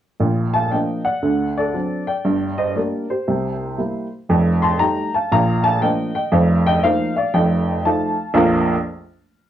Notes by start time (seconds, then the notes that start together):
0.20 A#1 A#2
0.54 F5 A5
0.71 F3 A#3 D4 D#5 G5
1.05 D5 F#5
1.22 D2 D3
1.57 A4 D5
1.74 F#3 C4 D4
2.07 D5 G5
2.25 G1 G2
2.58 C5 D#5
2.75 G3 A#3 D4 A#4 D5
3.10 G4 C5
3.27 C2 C3
3.79 G3 A#3 E4
4.29 F1 F2
4.62 A5 C6
4.80 G3 A3 D#4 G5 A#5
5.15 F5 A5
5.32 A#1 A#2 F5 A#5
5.64 F5 A5
5.82 F3 A#3 D4 D#5 G5
6.15 D#5 G5
6.32 F1 F2 C5 F5
6.66 D#5 G5
6.83 F3 A#3 D#4 C5 F5
7.16 D5 F5
7.34 F1 F2 D#5 G5
7.85 F3 A3 D#4 F5 A5
8.34 A#1 F2 F3 A#3 D4 F4 A#5